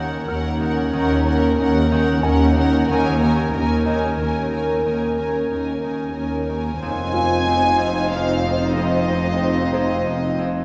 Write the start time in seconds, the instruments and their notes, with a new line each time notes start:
Already playing: cello section D#2, double bass section D#2, harp D#3 D#4, viola section C#4, violin section A#4 F#5, ambient pad A#4 C#5 F#5, grand piano G#5
0.28 cello section D#2, double bass section D#2, viola section C#4, harp D#4, violin section A#4 F#5, grand piano F6
0.61 harp D#3, viola section C#4, violin section A#4 F#5
0.92 cello section D#2, double bass section D#2, harp D#3, viola section C#4, violin section A#4 F#5
1.27 harp D#3, viola section C#4, violin section A#4 F#5
1.58 cello section D#2, double bass section D#2, viola section C#4, harp D#4, violin section A#4 F#5
1.89 harp D#3, viola section C#4, violin section A#4
1.94 violin section F#5
2.23 cello section D#2, double bass section D#2, viola section C#4, harp D#4, violin section A#4 F#5, grand piano G#5
2.56 harp D#3, viola section C#4, violin section A#4 F#5
2.89 cello section D#2, double bass section D#2, harp D#3, viola section C#4, violin section A#4 G#5, ambient pad A#4 C#5 G#5
3.21 harp D#3, viola section C#4, violin section A#4 G#5
3.54 cello section D#2, double bass section D#2, viola section C#4, harp D#4, violin section A#4 G#5
3.86 harp D#3, violin section A#4 G#5, grand piano D#5
3.90 viola section C#4
4.19 cello section D#2, double bass section D#2, viola section C#4, harp D#4, violin section A#4 G#5
4.52 harp D#3, viola section C#4, violin section A#4 G#5
4.84 cello section D#2, double bass section D#2, harp D#3, viola section C#4, violin section A#4 G#5
5.18 harp D#3, viola section C#4, violin section A#4 G#5
5.51 double bass section D#2, cello section D#2, viola section C#4, harp D#4, violin section A#4 G#5
5.82 harp D#3, viola section C#4, violin section A#4 G#5
6.15 cello section D#2, double bass section D#2, viola section C#4, harp D#4, violin section A#4 G#5
6.48 harp D#3, viola section C#4, violin section A#4 G#5
6.79 double bass section F1, cello section F2, harp F2, french horn section C4 D#4, viola section C4 D#4, violin section F4 C5 G#5, ambient pad C5 D#5 F5
7.13 harp F2, grand piano F4 F5
7.47 harp F2
7.78 harp F2
8.12 harp F2, violin section F5
8.44 harp F2
8.76 harp F2, violin section D#5
9.10 harp F2
9.42 harp F2
9.73 harp F2, grand piano C5
10.07 harp F2
10.39 harp F2